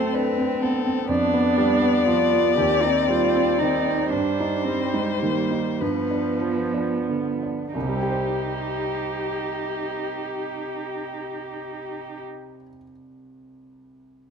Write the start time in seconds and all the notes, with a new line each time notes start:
Already playing: F#2 F#3 A3 C4 A4 C5
0.14 D4 B4
0.38 C4
0.62 B3 A4
0.86 C4
1.09 F2 B3 D4 D5
1.34 B3
1.58 G3
1.82 B3
2.06 F3 F4
2.33 B3
2.57 D#2 C4 G4
2.82 C4 D#4
3.07 G3 F4
3.36 C4
3.58 D#3 D#4
3.87 C4
4.10 G2 G3 D4 C5
4.40 D#4
4.65 G3 C4
4.94 G#3 D#4
5.22 D#3 A#3
5.51 D#4
5.80 G2 F3 B3 B4
6.11 D4
6.41 F3
6.74 D4
7.09 D3
7.43 D4
7.74 C2 D#4 G4
7.82 C3
7.89 G3
7.96 C4
8.03 G4
8.10 C5